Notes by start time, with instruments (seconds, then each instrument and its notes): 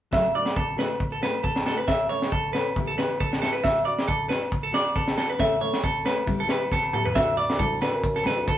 0.11 steel-string acoustic guitar F#3 A3 D4 F#4, clean electric guitar E5, kick, snare, low agogo
0.35 steel-string acoustic guitar A3 D4 F#4, clean electric guitar D5
0.45 snare, low agogo
0.56 clean electric guitar A4, kick
0.77 steel-string acoustic guitar A3 D4 F#4, clean electric guitar B4, snare, low agogo
1.00 kick
1.12 clean electric guitar A4
1.22 steel-string acoustic guitar A3 D4 F#4, clean electric guitar B4, snare, low agogo
1.43 clean electric guitar A4, kick
1.56 snare, low agogo
1.65 steel-string acoustic guitar A3 D4 F#4, clean electric guitar A4, snare
1.78 clean electric guitar B4
1.87 steel-string acoustic guitar E3 A3 C#4 A4, clean electric guitar E5, kick, snare, low agogo
2.09 steel-string acoustic guitar A3 C#4 A4, clean electric guitar C#5
2.22 snare, low agogo
2.32 clean electric guitar A4, kick
2.53 steel-string acoustic guitar C#4 A4, clean electric guitar B4, muted steel-string acoustic guitar stroke, snare, low agogo
2.76 steel-string acoustic guitar E3 B3 E4 G4, kick
2.87 clean electric guitar A4
2.98 steel-string acoustic guitar B3 E4 G4, clean electric guitar B4, snare, low agogo
3.20 clean electric guitar A4, kick
3.32 snare, low agogo
3.42 steel-string acoustic guitar B3 E4 G4, clean electric guitar A4, snare
3.53 clean electric guitar B4
3.63 steel-string acoustic guitar A3 D4 F#4, clean electric guitar E5, kick, snare, low agogo
3.85 steel-string acoustic guitar D4 F#4, clean electric guitar D5
3.98 snare, low agogo
4.08 clean electric guitar A4, kick
4.29 steel-string acoustic guitar D4 F#4, clean electric guitar B4, snare, low agogo
4.52 kick
4.63 clean electric guitar A4
4.72 steel-string acoustic guitar D4 F#4, clean electric guitar D5, snare, low agogo
4.96 clean electric guitar A4, kick
5.08 snare, low agogo
5.17 steel-string acoustic guitar D4 F#4, clean electric guitar A4, snare
5.30 clean electric guitar B4
5.39 steel-string acoustic guitar E3 A3 C#4 A4, clean electric guitar E5, kick, snare, low agogo
5.61 steel-string acoustic guitar A3 C#4 A4, clean electric guitar C#5
5.73 snare, low agogo
5.84 clean electric guitar A4, kick
6.03 steel-string acoustic guitar A3 C#4 A4, clean electric guitar B4, snare, low agogo
6.26 steel-string acoustic guitar G3 B3 E4 G4, kick
6.40 clean electric guitar A4
6.47 steel-string acoustic guitar B3 E4 G4, clean electric guitar B4, snare, low agogo
6.72 clean electric guitar A4, kick, snare
6.83 low agogo
6.93 steel-string acoustic guitar B3 E4 G4, clean electric guitar A4, mid tom
7.05 clean electric guitar B4, floor tom
7.15 bassoon D2, steel-string acoustic guitar A3 D4 F#4, clean electric guitar E5, kick, snare, muted conga, low agogo, maracas
7.37 steel-string acoustic guitar D4 F#4, clean electric guitar D5, muted conga, maracas
7.50 bassoon D2, snare, low agogo
7.59 clean electric guitar A4, kick, high conga, maracas
7.81 bassoon D3, steel-string acoustic guitar D4 F#4, clean electric guitar B4, snare, low agogo, maracas
7.93 bassoon F#2, maracas
8.03 kick, muted conga, maracas
8.15 clean electric guitar A4, snare, maracas
8.24 bassoon D2, steel-string acoustic guitar D4 F#4, clean electric guitar B4, snare, high conga, low agogo, maracas
8.37 bassoon D2
8.48 clean electric guitar A4, kick, maracas